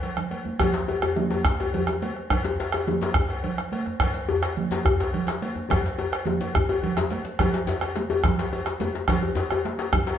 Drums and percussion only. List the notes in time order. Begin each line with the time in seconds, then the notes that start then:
0.03 cowbell, low conga
0.17 bombo rim, djembe slap, low conga
0.31 cowbell, high conga
0.45 djembe slap, high conga, djembe tone
0.59 bombo rim, bombo low, cowbell, djembe tone, low conga, djembe bass
0.74 djembe slap
0.88 cowbell, djembe tone
1.02 bombo rim, cowbell, djembe bass
1.16 djembe tone, high conga, low conga
1.30 cowbell, djembe tone
1.45 bombo rim, bombo low, djembe slap, djembe bass
1.59 bombo rim, cowbell, djembe tone
1.74 cowbell, low conga, djembe bass
1.87 bombo rim, djembe slap, djembe tone
2.02 cowbell, high conga
2.16 bombo rim
2.30 bombo rim, bombo low, cowbell, djembe bass, low conga
2.44 djembe slap, djembe tone
2.60 cowbell, djembe slap
2.72 bombo rim, cowbell, djembe tone
2.87 high conga, djembe tone, low conga
3.01 cowbell, djembe slap, djembe tone
3.14 bombo rim, bombo low, djembe tone, djembe bass
3.29 bombo rim, cowbell
3.44 cowbell, low conga
3.58 bombo rim, djembe slap
3.72 cowbell, high conga
3.86 bombo rim, djembe tone
4.00 bombo rim, bombo low, cowbell, djembe bass, low conga
4.14 djembe slap
4.28 cowbell, djembe bass
4.42 bombo rim, cowbell, djembe slap
4.57 high conga, low conga
4.71 cowbell, djembe slap, djembe tone
4.85 bombo rim, bombo low, djembe bass
5.00 bombo rim, cowbell, djembe slap
5.14 cowbell, low conga
5.27 bombo rim, djembe slap
5.29 djembe slap
5.42 cowbell, high conga
5.55 bombo rim, djembe tone
5.70 bombo rim, bombo low, cowbell, djembe slap, djembe tone, low conga, djembe bass
5.84 djembe slap, high conga
5.98 bombo rim, cowbell, djembe slap, high conga, djembe tone
6.12 bombo rim, cowbell
6.25 djembe slap, high conga, djembe tone, low conga
6.41 cowbell, djembe slap, djembe tone
6.54 bombo rim, bombo low, djembe tone, djembe bass
6.69 bombo rim, cowbell, djembe slap, djembe tone, high conga
6.83 cowbell, djembe bass, low conga
6.97 bombo rim, djembe slap, high conga, djembe bass
7.10 bombo rim, cowbell, djembe slap, high conga
7.25 djembe slap
7.39 bombo rim, bombo low, cowbell, djembe tone, djembe bass, low conga
7.53 bombo rim, djembe slap
7.67 cowbell, djembe slap, djembe tone
7.81 bombo rim, cowbell, djembe tone
7.96 djembe slap, high conga
8.10 cowbell, djembe slap, djembe tone
8.24 bombo rim, bombo low, djembe slap, djembe tone, djembe bass, low conga
8.39 cowbell, djembe slap
8.53 cowbell, djembe tone
8.66 bombo rim, djembe slap
8.80 cowbell, djembe slap, djembe tone, high conga
8.95 djembe slap
9.08 bombo rim, bombo low, cowbell, djembe slap, low conga, djembe bass
9.22 bombo rim, djembe tone
9.35 cowbell, djembe slap, djembe tone
9.51 bombo rim, cowbell, djembe tone
9.65 djembe slap, high conga
9.78 cowbell, djembe slap
9.93 bombo rim, bombo low, djembe slap, djembe tone, djembe bass, low conga
10.07 cowbell, djembe slap